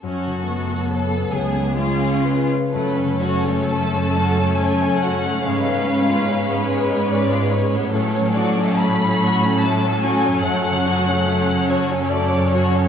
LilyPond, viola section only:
\new Staff \with { instrumentName = "Viola section" } { \time 3/4 \key fis \minor \tempo 4 = 72 << { r2. | cis'2.~ | cis'2. | cis'2.~ |
cis'2. | } \\ { cis'8 b4. cis'4 | a2.~ | a4 gis2 | fis2.~ |
fis2. | } >> }